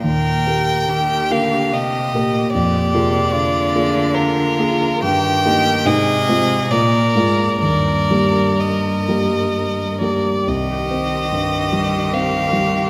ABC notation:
X:1
M:3/4
L:1/16
Q:1/4=71
K:Eb
V:1 name="Violin"
g6 f2 e4 | d8 B4 | g4 e4 d4 | d4 e6 d2 |
[K:Cm] e8 f4 |]
V:2 name="Violin"
B4 G4 G4 | G4 F4 F4 | G2 G2 A4 B4 | B8- B3 z |
[K:Cm] G12 |]
V:3 name="Grand piano"
E,,2 [B,GB]4 [B,GB]4 [B,GB]2 | F,,2 [B,FA]4 [B,FA]4 [B,FA]2 | G,,2 [B,EG]2 A,,2 [A,CF]2 B,,2 [A,B,F]2 | E,,2 [G,B,G]4 [G,B,G]4 [G,B,G]2 |
[K:Cm] C,,2 C2 G,,2 G,2 C2 G,2 |]
V:4 name="Cello" clef=bass
B,,4 E,2 D,2 C,2 B,,2 | B,,2 C,2 D,8 | E,4 C,4 B,,2 A,,2 | G,,8- G,,3 z |
[K:Cm] E,12 |]